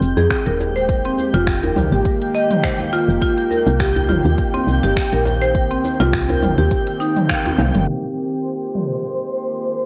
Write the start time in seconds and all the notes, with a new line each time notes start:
Already playing: D#3 G#3 A#3 G4 G5
0.01 F1, shaker
0.17 F2 G#4, closed hi-hat, djembe slap, shaker
0.30 finger snap, kick, closed hi-hat, shaker
0.46 D#1 A#4, closed hi-hat, djembe tone
0.60 djembe slap, djembe tone, shaker
0.76 C5, shaker
0.89 kick, closed hi-hat, shaker
1.05 C4, closed hi-hat
1.18 djembe tone, shaker
1.34 F1 F4, closed hi-hat, djembe slap, shaker
1.47 finger snap, kick, closed hi-hat, shaker
1.63 A#4, closed hi-hat, djembe slap, djembe bass
1.76 C2, mid tom, djembe bass, shaker
1.92 G#1 G4, closed hi-hat, shaker
2.05 kick, closed hi-hat, shaker
2.22 closed hi-hat
2.35 D#5, shaker
2.51 closed hi-hat, mid tom, shaker
2.63 C5, finger snap, kick, closed hi-hat, djembe slap, shaker
2.79 closed hi-hat, djembe tone
2.93 F4, djembe slap, shaker
3.08 F1, shaker
3.22 C4 F4, kick, closed hi-hat, shaker
3.38 closed hi-hat
3.51 A#4, djembe tone, shaker
3.67 C2, closed hi-hat, shaker
3.80 G4, finger snap, kick, closed hi-hat, shaker
3.96 closed hi-hat, djembe bass
4.09 G1 F4, mid tom, djembe bass, shaker
4.25 D#2, closed hi-hat, shaker
4.38 kick, closed hi-hat, shaker
4.54 C4, closed hi-hat, djembe tone
4.67 C2, shaker
4.83 G1 G4, closed hi-hat, djembe slap, shaker
4.96 finger snap, kick, closed hi-hat, shaker
5.12 A#1 A#4, closed hi-hat, djembe tone
5.25 djembe slap, djembe tone, shaker
5.42 C5, shaker
5.55 kick, closed hi-hat, shaker
5.71 C4, closed hi-hat
5.84 djembe tone, shaker
6.00 C2 F4, closed hi-hat, djembe slap, shaker
6.13 finger snap, kick, closed hi-hat, shaker
6.29 A#4, closed hi-hat, djembe slap, djembe tone, djembe bass
6.42 G1, mid tom, djembe bass, shaker
6.58 D#2 G4, closed hi-hat, shaker
6.71 kick, closed hi-hat, shaker
6.87 closed hi-hat
7.00 D#4, shaker
7.17 closed hi-hat, mid tom, shaker
7.29 F5, finger snap, kick, closed hi-hat, djembe slap, shaker
7.46 closed hi-hat, high tom, djembe tone, djembe bass
7.58 C2 F5, mid tom, djembe slap, shaker
7.75 G1, closed hi-hat, mid tom, shaker
7.88 D#3 G#3 A#3 F4 G4 C5
8.17 shaker
8.34 shaker
8.75 mid tom, shaker
8.92 shaker
9.05 shaker
9.34 shaker
9.51 shaker
9.63 shaker